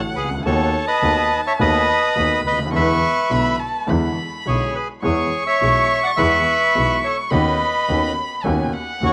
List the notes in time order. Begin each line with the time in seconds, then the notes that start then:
Already playing: A1 A2 D3 A3 C#4 F#4 F#5
0.16 C#2 G#4 B4
0.24 C2
0.31 C#2
0.38 D2
0.43 D#2 D#3 A3 B3 F#4 A4 C#5 A5
0.87 B4 D#5
1.02 D#2 D#3 A3 B3 F#4
1.47 C#5 E5
1.59 D#2 D#3 A3 B3 F#4 B4 D#5
2.15 D#2 D#3 A3 B3 F#4 B5
2.45 D2 B4 D#5
2.52 C#2
2.59 D2
2.66 D#2
2.72 E2 D3 E3 G#3 B3 E4 B4 C#6
2.76 E5
3.30 B1 B2 D3 G#3 B3 E4 B5
3.60 A5
3.87 E2 D3 E3 G#3 B3 E4 B5
4.45 B1 B2 D3 G#3 B3 E4 G#4 C#5
4.75 G#4 B4
5.02 E2 E3 G#3 B3 G#4 C#5 C#6
5.47 C#5 E5
5.61 B1 B2 E3 G#3 B3 G#4
6.03 D5 F#5
6.16 E2 E3 G#3 B3 G#4 B4 E5
6.75 B1 B2 E3 G#3 B3 G#4
7.04 A4 C#5
7.31 D#2 D#3 B3 C#4 F#4 B4 D#5 B5
7.88 D#2 D#3 B3 C#4 F#4
8.43 D#2 D#3 B3 C#4 F#4 G#5
8.74 F#5
9.01 D#2 D#3 B3 C#4 F#4
9.05 C#5